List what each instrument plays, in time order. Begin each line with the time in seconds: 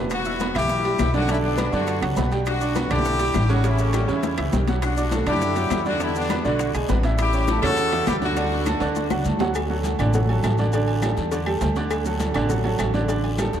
Already playing: upright bass E1
0.10 horn section B3 F#4, high bongo, high conga, high timbale, long guiro, claves, maracas
0.25 upright piano E4 E5 E6, high bongo, high conga, maracas
0.39 upright piano B3 B4 B5, high bongo, high conga, high timbale, low timbale, short guiro, maracas
0.55 upright bass B1, upright piano E3 E4 E5, horn section E4 G4, high bongo, high conga, low conga, high timbale, short guiro, claves, maracas
0.69 high bongo, high conga, long guiro, maracas
0.84 upright piano G3 G4 G5, high conga, high timbale
0.99 upright bass B1, high bongo, low bongo, high conga, high timbale, low timbale, short guiro, claves, maracas
1.14 upright piano D3 D4 D5, horn section D4 F#4, high bongo, high conga, short guiro, maracas
1.28 upright piano D3 D4 D5, horn section C#4 E4, high bongo, high conga, high timbale, long guiro, maracas
1.43 horn section B3 D4, high bongo, high conga
1.57 upright piano B3 B4 B5, high bongo, high conga, high timbale, low timbale, short guiro, claves, maracas
1.72 upright bass F#2, upright piano D3 D4 D5, horn section D4 F#4, high bongo, high conga, short guiro, maracas
1.87 high bongo, high conga, high timbale, long guiro, maracas
2.02 upright bass C#2, upright piano F#3 F#4 F#5, high conga, high timbale, claves
2.16 upright bass B1, upright piano B3 B4 B5, high bongo, low bongo, high conga, low timbale, short guiro, maracas
2.31 upright piano G3 G4 G5, high bongo, high conga, high timbale, short guiro, maracas
2.46 horn section D4 F#4, high bongo, high conga, high timbale, long guiro, claves, maracas
2.61 upright piano D4 D5 D6, high bongo, high conga, maracas
2.75 upright piano B3 B4 B5, high bongo, high conga, high timbale, low timbale, short guiro, maracas
2.90 upright bass B1, upright piano D3 D4 D5, horn section E4 G4, high bongo, high conga, low conga, high timbale, short guiro, claves, maracas
3.05 high bongo, high conga, long guiro, maracas
3.19 upright piano G3 G4 G5, high conga, high timbale, maracas
3.34 upright bass A1, high bongo, low bongo, high conga, high timbale, low timbale, short guiro, claves, maracas
3.49 upright piano C#3 C#4 C#5, horn section D4 F#4, high bongo, high conga, short guiro, maracas
3.64 upright piano C#3 C#4 C#5, horn section C#4 E4, high bongo, high conga, high timbale, long guiro, maracas
3.78 horn section A3 C#4, high bongo, high conga, maracas
3.93 upright piano G3 G4 G5, high bongo, high conga, high timbale, low timbale, short guiro, claves, maracas
4.08 upright bass E2, upright piano C#3 C#4 C#5, horn section C#4 E4, high bongo, high conga, short guiro, maracas
4.23 high bongo, high conga, high timbale, long guiro, maracas
4.38 upright bass C#2, upright piano E3 E4 E5, high conga, high timbale, claves
4.53 upright bass B1, upright piano G3 G4 G5, low bongo, high conga, low timbale, short guiro, maracas
4.67 upright piano F#3 F#4 F#5, low bongo, high conga, high timbale, short guiro, maracas
4.82 horn section D4 F#4, high bongo, high timbale, long guiro, claves, maracas
4.97 upright piano D4 D5 D6, high bongo, high conga, maracas
5.11 upright piano A3 A4 A5, high bongo, high conga, high timbale, low timbale, short guiro, maracas
5.26 upright bass F#2, upright piano D3 D4 D5, horn section E4 G4, high bongo, high conga, low conga, high timbale, short guiro, claves, maracas
5.41 high bongo, high conga, long guiro, maracas
5.56 upright piano F#3 F#4 F#5, high conga, high timbale, maracas
5.70 upright bass E2, high bongo, low bongo, high conga, high timbale, low timbale, short guiro, claves, maracas
5.85 upright piano D3 D4 D5, horn section D4 F#4, high bongo, high conga, short guiro, maracas
6.00 upright piano D3 D4 D5, horn section B3 E4, high bongo, high conga, high timbale, long guiro, maracas
6.15 horn section B3 D4, high bongo, high conga, maracas
6.29 upright piano B3 B4 B5, high bongo, high conga, high timbale, low timbale, short guiro, claves, maracas
6.44 upright bass B1, upright piano D3 D4 D5, horn section D4 F#4, high bongo, high conga, short guiro, maracas
6.59 high bongo, high conga, high timbale, long guiro, maracas
6.74 upright bass B1, upright piano G#3 G#4 G#5, high conga, high timbale, claves, maracas
6.89 upright bass A1, upright piano B3 B4 B5, high bongo, low bongo, high conga, low timbale, short guiro, maracas
7.03 upright piano E3 E4 E5, high bongo, high conga, high timbale, short guiro, maracas
7.18 horn section E4 G4, high bongo, high conga, high timbale, long guiro, claves, maracas
7.33 upright piano C#4 C#5 C#6, high bongo, high conga, maracas
7.47 upright piano A3 A4 A5, high bongo, high conga, high timbale, low timbale, short guiro, maracas
7.62 upright bass E2, upright piano C#3 C#4 C#5, horn section F#4 A4, high bongo, high conga, low conga, high timbale, short guiro, claves, maracas
7.77 high bongo, high conga, long guiro, maracas
7.92 upright piano E3 E4 E5, high conga, high timbale
8.07 upright bass D2, horn section E4 G4, high bongo, low bongo, high conga, high timbale, low timbale, short guiro, claves, maracas
8.21 upright piano D3 D4 D5, horn section D4 F#4, high bongo, high conga, short guiro, maracas
8.36 upright piano D3 D4 D5, high bongo, high timbale, long guiro, maracas
8.51 high bongo, high conga
8.66 upright piano A3 A4 A5, high bongo, high conga, high timbale, low timbale, short guiro, claves, maracas
8.80 upright bass D2, upright piano D3 D4 D5, high bongo, high conga, high timbale, short guiro, maracas
8.95 high bongo, high conga, long guiro, maracas
9.10 upright bass C#2, upright piano F#3 F#4 F#5, high bongo, high conga, claves, maracas
9.25 upright bass D2, upright piano A3 A4 A5, high conga, short guiro, maracas
9.39 upright piano F#3 F#4 F#5, low bongo, high conga, low timbale, short guiro, maracas
9.54 cowbell, high conga, low agogo, long guiro, claves, maracas
9.70 upright piano F#3 F#4 A4, high conga
9.84 cowbell, high conga, low timbale, low agogo, short guiro, maracas
9.99 upright bass A1, upright piano D3 D4 D5, cowbell, high conga, low conga, low agogo, short guiro, claves, maracas
10.13 upright piano F#3 F#4 A4, cowbell, high conga, low conga, long guiro, maracas
10.29 upright piano F#3 F#4 A4, high conga, low agogo
10.43 upright bass A1, cowbell, high conga, low timbale, low agogo, short guiro, claves, maracas
10.58 upright piano D3 D4 D5, high conga, short guiro, maracas
10.72 upright piano D3 D4 D5, cowbell, high conga, low agogo, long guiro, maracas
10.88 high conga, low agogo
11.02 upright piano G3 G4 A4, cowbell, high conga, low timbale, low agogo, short guiro, claves, maracas
11.17 upright bass E2, cowbell, high conga, short guiro, maracas
11.31 upright piano D3 D4 D5, cowbell, high conga, low agogo, long guiro, maracas
11.46 upright piano G3 G4 A4, high conga, low agogo, claves
11.61 upright bass D2, cowbell, high conga, low timbale, low agogo, short guiro, maracas
11.76 upright piano D3 D4 D5, cowbell, high conga, short guiro, maracas
11.91 cowbell, high conga, low agogo, long guiro, claves, maracas
12.05 upright piano F#3 F#4 A4, high conga, maracas
12.20 cowbell, high conga, low timbale, low agogo, short guiro, maracas
12.34 upright bass A1, upright piano D3 D4 D5, cowbell, high conga, low conga, low agogo, short guiro, claves, maracas
12.49 upright piano F#3 F#4 A4, cowbell, high conga, low conga, long guiro, maracas
12.64 upright piano F#3 F#4 A4, high conga, low agogo
12.79 upright bass A1, cowbell, high conga, low timbale, low agogo, short guiro, claves, maracas
12.94 upright piano D3 D4 D5, high conga, short guiro, maracas
13.08 upright piano D3 D4 D5, cowbell, high conga, low agogo, long guiro, maracas
13.23 high conga, low agogo
13.38 upright piano G3 G4 A4, cowbell, high conga, low timbale, low agogo, short guiro, claves, maracas
13.53 upright bass E2, cowbell, high conga, short guiro, maracas